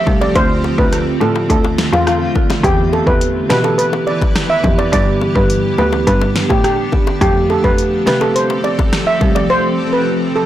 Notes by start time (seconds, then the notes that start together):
Already playing: F3 C4 G4 A4
0.07 C2 F3 A3 G4, kick, low bongo
0.21 D5, high bongo
0.35 D2 D3 A3 C4 F4 C5, kick, closed hi-hat
0.64 high bongo
0.78 D2 D3 C4 F4 B4, kick
0.93 cross-stick, closed hi-hat
1.21 A2 D3 C4 F4 A4, low bongo
1.35 high bongo
1.50 D2 A4, kick, closed hi-hat
1.64 high bongo
1.78 snare, high bongo
1.93 E2 F4, high bongo
2.07 F4, cross-stick, closed hi-hat
2.35 D3 C4 F4, kick, low bongo
2.50 snare, high bongo
2.64 E2 E3 B3 E4 G4 B4, kick, closed hi-hat
2.93 A4, high bongo
3.07 E2 E3 B3 G4 B4, kick
3.21 closed hi-hat
3.50 B2 E3 B3 G4 B4, snare, low bongo
3.64 A4, high bongo
3.78 B4, closed hi-hat
3.93 high bongo
4.07 D5, high bongo
4.22 kick, high bongo
4.36 cross-stick, snare, closed hi-hat
4.50 E5
4.64 F2 E3 B3 G4, kick, low bongo
4.78 D5, high bongo
4.92 G2 D3 B3 D4 G4 D5, kick, closed hi-hat
5.21 high bongo
5.35 G2 D3 B3 G4 B4, kick
5.50 closed hi-hat
5.78 D2 D3 B3 G4 B4, low bongo
5.92 high bongo
6.07 G2 B4, kick, closed hi-hat
6.21 high bongo
6.36 snare, high bongo
6.50 A2 G4, kick, high bongo
6.64 G4, cross-stick, closed hi-hat
6.92 D3 B3 G4, kick, low bongo
7.07 high bongo
7.21 F2 F3 A3 C4 G4 A4, kick, closed hi-hat
7.50 A4, high bongo
7.64 F2 F3 A3 G4 B4, kick
7.78 closed hi-hat
8.07 C3 F3 A3 G4 B4, snare, low bongo
8.21 A4, high bongo
8.36 C5, closed hi-hat
8.50 high bongo
8.64 D5, high bongo
8.79 kick, high bongo
8.93 cross-stick, snare, closed hi-hat
9.07 E5
9.21 C2 F3 A3 G4, kick, low bongo
9.35 D5, high bongo
9.50 D3 A3 F4 C5
9.93 B4
10.36 A4